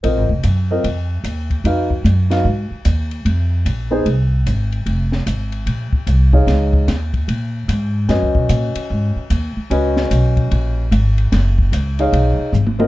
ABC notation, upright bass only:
X:1
M:4/4
L:1/8
Q:"Swing" 1/4=149
K:Bbphr
V:1 name="Upright bass" clef=bass
(3B,,, A,,, F,,, G,,2 F,,2 E,,2 | F,,2 G,,2 A,, z E,,2 | F,,2 B,,,2 =C,,2 A,,,2 | F,,,2 A,,,2 B,,, z =C,,2 |
D,,2 E,,2 B,,2 A,,2 | (3G,, D,, C,, B,, z A,, z E,, z | D,,2 C,,2 B,,,2 A,,,2 | G,,,2 D,,2 C,, z A,,,2 |]